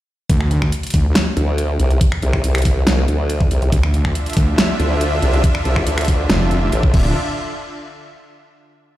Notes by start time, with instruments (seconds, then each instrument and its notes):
0.30 wobble bass D2, kick, closed hi-hat
0.41 finger snap
0.51 closed hi-hat
0.62 finger snap, kick
0.72 closed hi-hat
0.83 closed hi-hat
0.87 closed hi-hat
0.90 wobble bass D2, kick, closed hi-hat, open hi-hat
1.15 snare, closed hi-hat
1.37 wobble bass D2, closed hi-hat
1.58 closed hi-hat
1.80 wobble bass C2, closed hi-hat
1.91 closed hi-hat
2.01 kick, closed hi-hat
2.12 finger snap
2.22 wobble bass C2, closed hi-hat
2.33 finger snap, kick
2.44 wobble bass C2, closed hi-hat
2.55 finger snap, closed hi-hat
2.58 closed hi-hat
2.62 kick, closed hi-hat, open hi-hat
2.87 snare, closed hi-hat
3.08 wobble bass D2, closed hi-hat
3.30 closed hi-hat
3.41 kick
3.51 wobble bass C2, closed hi-hat
3.62 closed hi-hat
3.72 wobble bass D2, supersaw synth D3 D4 F4 E5, kick, closed hi-hat
3.83 finger snap
3.94 closed hi-hat
4.05 finger snap, kick
4.15 closed hi-hat
4.26 closed hi-hat
4.30 closed hi-hat
4.33 wobble bass D2, kick, closed hi-hat, open hi-hat
4.58 snare, closed hi-hat
4.80 wobble bass D2, closed hi-hat
5.01 closed hi-hat
5.22 wobble bass C2, closed hi-hat
5.33 closed hi-hat
5.44 kick, closed hi-hat
5.55 finger snap
5.65 wobble bass C2, closed hi-hat
5.76 finger snap, kick
5.87 wobble bass D2, closed hi-hat
5.98 finger snap, closed hi-hat
6.01 closed hi-hat
6.05 kick, closed hi-hat, open hi-hat
6.30 wobble bass F1, snare, closed hi-hat
6.51 closed hi-hat
6.72 wobble bass A1, closed hi-hat
6.83 kick
6.94 wobble bass D1, supersaw synth D3 D4 F4 E5, kick, crash